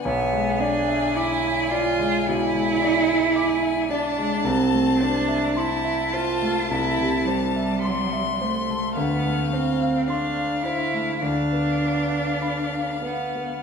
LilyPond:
<<
  \new Staff \with { instrumentName = "Violin" } { \time 4/4 \key a \minor \tempo 4 = 54 gis''2. gis''8 a''8~ | a''4 a''2 c'''4 | f''4 f''4 f''2 | }
  \new Staff \with { instrumentName = "Grand piano" } { \time 4/4 \key a \minor b,,16 gis16 d''16 e''16 d'''16 e''16 d''16 gis16 b,16 gis16 d''16 e''16 d'''16 e''16 d''16 gis16 | c,16 a16 c''16 e''16 c'''16 e''16 c''16 a16 c,16 c16 c''16 e''16 c'''16 e''16 c''16 a16 | d,16 a16 c''16 f''16 c'''16 f''16 c''16 a16 d,16 b16 b'16 f''16 b''16 f''16 b'16 b16 | }
  \new Staff \with { instrumentName = "Cello" } { \time 4/4 \key a \minor b8 d'8 e'8 f'8 e'4. d'8 | c'8 d'8 e'8 f'8 e'8 g4 a8 | b8 c'8 d'8 e'8 d'4. b8 | }
>>